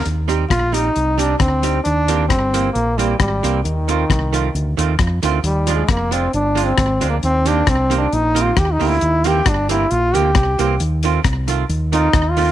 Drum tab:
HH |xxxxxxxx|xxxxxxxx|xxxxxxxx|xxxxxxxx|
SD |--r---r-|--r---r-|--r---r-|--r---r-|
BD |--o---o-|--o---o-|--o---o-|--o---o-|

HH |xxxxxxxo|xxxxxxxx|xxxxxxxo|
SD |--r---r-|--r---r-|--r---r-|
BD |--o---o-|--o---o-|--o---o-|